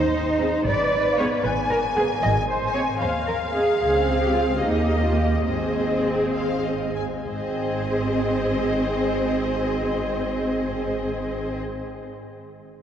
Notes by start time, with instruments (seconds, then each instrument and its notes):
Already playing: double bass section D#2, cello section D#4, violin section C5
0.40 viola section C4 G#4, violin section D#5
0.66 double bass section G#1, violin section B4, cello section D5
1.18 viola section B3 G#4, cello section C#5, violin section F5
1.43 double bass section G#1, cello section B4, violin section G#5
1.70 cello section A#4
1.96 viola section B3 G#4, cello section G#4, violin section F5
2.22 double bass section G#1, cello section D#5
2.49 cello section C5
2.74 viola section C4 G#4, cello section C#5, violin section D#5
3.01 double bass section D#2, cello section C5, violin section F5
3.27 cello section A#4
3.54 viola section C4 G#4, cello section G#4, violin section D#5
3.80 double bass section C#2, viola section C4 G#4, cello section G#4, violin section F5
4.22 cello section G4
4.34 cello section F4
4.61 double bass section D#2, viola section A#3 G4, cello section D#4, violin section D#5
5.04 cello section F4
5.17 cello section G4
5.45 double bass section G#1, viola section C4 G#4, cello section G#4, violin section C5 D#5
6.32 violin section F5
6.64 violin section D#5
6.95 violin section G#5
7.25 double bass section G#1, viola section C4, cello section G#4, violin section C5 D#5